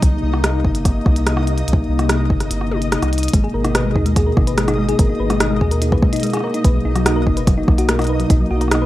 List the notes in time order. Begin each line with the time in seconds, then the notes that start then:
Already playing: D#4 D#5
0.02 C2 C3 A#3, kick, closed hi-hat
0.23 C2
0.34 cross-stick
0.44 cross-stick, closed hi-hat
0.65 G1, kick
0.75 closed hi-hat
0.85 kick, cross-stick, closed hi-hat
1.06 C2, kick, cross-stick
1.16 closed hi-hat
1.27 cross-stick, closed hi-hat
1.37 cross-stick
1.47 closed hi-hat
1.58 closed hi-hat
1.68 C2, closed hi-hat
1.73 kick
1.89 C2
1.99 cross-stick, closed hi-hat
2.09 cross-stick, closed hi-hat
2.30 G1, kick
2.40 cross-stick, closed hi-hat
2.51 G1, closed hi-hat
2.61 cross-stick
2.71 high tom
2.82 closed hi-hat
2.92 cross-stick, closed hi-hat
3.02 C2, cross-stick, closed hi-hat
3.13 closed hi-hat
3.18 closed hi-hat
3.23 closed hi-hat
3.28 closed hi-hat
3.33 G#1 B2 G#3 A#3 D#4 G#4 D#5, kick, closed hi-hat
3.44 G#4
3.54 G#1 A#4
3.65 D#4, cross-stick, closed hi-hat
3.75 B4, cross-stick, closed hi-hat
3.85 G#3
3.96 D#2 D#4, kick
4.06 G#3, closed hi-hat
4.16 G#4, kick, cross-stick, closed hi-hat
4.26 A#4
4.37 G#1 D#4, kick, cross-stick
4.47 B4, closed hi-hat
4.58 G#3, cross-stick, closed hi-hat
4.68 D#4, cross-stick, closed hi-hat
4.78 G#3
4.89 G#4, closed hi-hat
4.99 G#1 A#4, kick, closed hi-hat
5.09 D#4
5.20 G#1 B4
5.30 G#3, cross-stick, closed hi-hat
5.40 D#4, cross-stick, closed hi-hat
5.51 G#3
5.61 D#2 G#4, kick
5.71 A#4, closed hi-hat
5.82 D#4, closed hi-hat
5.92 B4, kick, cross-stick
6.02 G#3, kick
6.13 D#4, closed hi-hat
6.16 closed hi-hat
6.20 G#3, closed hi-hat
6.23 closed hi-hat
6.27 closed hi-hat
6.30 cross-stick, closed hi-hat
6.33 G#4, cross-stick, closed hi-hat
6.40 A#4, cross-stick
6.44 cross-stick
6.47 cross-stick
6.54 D#4, closed hi-hat
6.64 B1 B2 D#4 B4, kick, closed hi-hat
6.75 F#3
6.85 B1 D#4
6.96 F#3, cross-stick, closed hi-hat
7.06 F#4, cross-stick, closed hi-hat
7.16 A#4
7.27 F#1 D#4, kick
7.37 B4, closed hi-hat
7.47 F#3, kick, cross-stick, closed hi-hat
7.58 D#4
7.68 B1 F#3, kick, cross-stick
7.78 F#4, closed hi-hat
7.89 A#4, cross-stick, closed hi-hat
7.99 D#4, cross-stick, closed hi-hat
8.02 closed hi-hat
8.04 closed hi-hat
8.07 B4, closed hi-hat
8.20 F#3, closed hi-hat
8.30 B1 D#4, kick, closed hi-hat
8.40 F#3
8.51 B1 F#4
8.61 A#4, cross-stick, closed hi-hat
8.68 D#4, cross-stick
8.71 cross-stick, closed hi-hat
8.75 cross-stick
8.82 B4